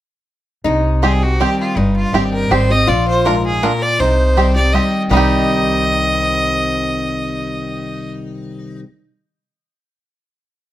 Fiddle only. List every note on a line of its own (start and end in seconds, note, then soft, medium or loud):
1.03 1.24 G#4 medium
1.23 1.42 F#4 medium
1.40 1.60 G4 medium
1.60 1.79 F4 medium
1.77 1.95 D#4 medium
1.96 2.15 F4 medium
2.14 2.33 G4 medium
2.33 2.52 A#4 medium
2.51 2.72 C5 medium
2.71 2.90 D#5 loud
2.88 3.07 D5 medium
3.08 3.27 C5 medium
3.25 3.45 A#4 medium
3.46 3.64 G#4 medium
3.62 3.84 A#4 medium
3.82 4.01 D5 loud
3.99 4.55 C5 loud
4.55 4.74 D5 medium
4.73 5.02 D#5 medium
5.10 8.09 D#5 loud